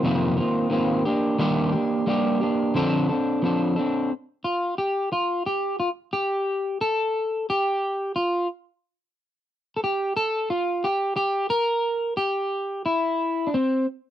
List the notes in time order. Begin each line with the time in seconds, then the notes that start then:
0.03 F2 C3 D#3 A#3 C4 F4
0.37 D#3 A#3 C4 F4
0.70 D#3 A#3 C4 F4
1.05 A#3 D4 G4
1.39 D#3 G3 A#3 D4 G4
1.72 A#3 D4 G4
2.07 G3 A#3 D4 G4
2.41 A#3 D4 G4
2.75 D3 F3 C4 D4 A4
3.09 C4 D4 A4
3.42 F3 C4 D4 A4
3.76 C4 D4 A4
4.44 F4
4.78 G4
5.12 F4
5.46 G4
5.80 F4
6.13 G4
6.81 A4
7.50 G4
8.16 F4
9.76 A4
9.84 G4
10.17 A4
10.50 F4
10.84 G4
11.16 G4
11.50 A#4
12.17 G4
12.86 E4
13.47 D4
13.54 C4